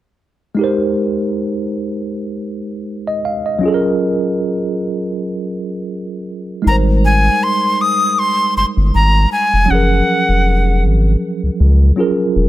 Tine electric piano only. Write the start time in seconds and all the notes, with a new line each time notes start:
0.55 G#3 D#4
0.59 G4 A#4
0.64 C5
3.07 D#5
3.25 F5
3.46 D#5
3.59 F#3 C#4
3.63 F4 G#4
3.68 A4
3.74 A#4
6.62 G#3 D#4
6.67 G3 A#4
6.71 C5
9.66 F#3 C#4
9.70 F3 G#4
9.75 A#4
11.96 F#3 C#4 F4 G#4
12.00 A#4